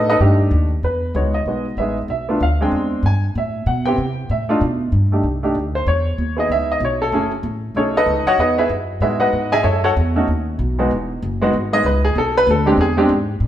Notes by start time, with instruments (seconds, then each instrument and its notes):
Already playing: upright bass A2
0.09 grand piano D#4 A4 B4 D#5
0.20 upright bass G2, grand piano A3 D4 D#4 G4
0.51 upright bass D#2
0.83 upright bass E2, grand piano B4
1.15 upright bass C#2, grand piano G#3 B3 D#4 F#4 C#5
1.34 grand piano D#5
1.46 upright bass B1, grand piano G#3 B3 D#4 F#4
1.77 upright bass A1, grand piano G#3 B3 D#4 G#4 E5
2.08 upright bass B1, grand piano E5
2.29 grand piano A3 B3 D4 F4
2.40 upright bass D2, grand piano F5
2.61 grand piano G#3 C4 D4 G#4 G5
2.72 upright bass E2
3.03 upright bass G2, grand piano G#5
3.35 upright bass A2, grand piano E5
3.66 upright bass B2, grand piano F#5
3.86 grand piano B3 C4 E4 G4 G5
3.98 upright bass C3
4.29 upright bass A2, grand piano E5
4.49 grand piano A3 D4 D#4 F4
4.61 upright bass B2
4.92 upright bass G2
5.12 grand piano A3 D4 D#4 G4
5.23 upright bass C2
5.43 grand piano A3 D4 D#4 G4
5.55 upright bass D2
5.75 grand piano C5
5.86 upright bass E2, grand piano C#5
6.18 upright bass D#2
6.37 grand piano B3 D#4 E4 G#4 D#5
6.49 upright bass C#2, grand piano E5
6.72 grand piano D#5
6.80 upright bass B1
6.85 grand piano C#5
7.02 grand piano A4
7.12 upright bass F#1, grand piano A3 C#4 E4 G#4
7.43 upright bass A1
7.75 upright bass B1, grand piano A3 C#4 D#4 G#4 A4 C#5
7.97 grand piano D#4 A4 B4 D#5
8.06 upright bass C#2
8.26 grand piano F#4 C#5 D#5 F#5, muted upright bass stroke
8.38 upright bass E2, grand piano D#4 G#4 B4 D#5
8.58 grand piano E4 G#4 B4 E5
8.69 upright bass F#2
9.00 upright bass A2, grand piano G#3 B3 D#4 E4 F#4 G#4 B4 E5
9.20 grand piano F#4 B4 D#5 F#5
9.33 upright bass G#2
9.52 grand piano G#4 D#5 E5 G#5
9.63 upright bass F#2, grand piano E4 A4 C#5 E5
9.84 grand piano F#4 A4 C#5 F#5
9.96 upright bass E2
10.16 grand piano A3 C#4 D#4 F#4
10.28 upright bass D#2
10.59 upright bass B1
10.79 grand piano E2 G#3 B3 D#4 F#4
10.91 upright bass E1
11.22 upright bass F#1
11.42 grand piano G#3 B3 D#4 F#4
11.53 upright bass G#1
11.73 grand piano G#3 B3 D#4 G#4 D#5
11.84 upright bass C#2, grand piano B4
12.05 grand piano G#4
12.15 upright bass B1, grand piano A4
12.37 grand piano B4
12.47 upright bass D2, grand piano A4
12.66 grand piano G#3 C4 D4 G4
12.77 upright bass E2, grand piano G#4
12.97 grand piano G#3 C4 D4 G4
13.09 upright bass G#2
13.40 upright bass A2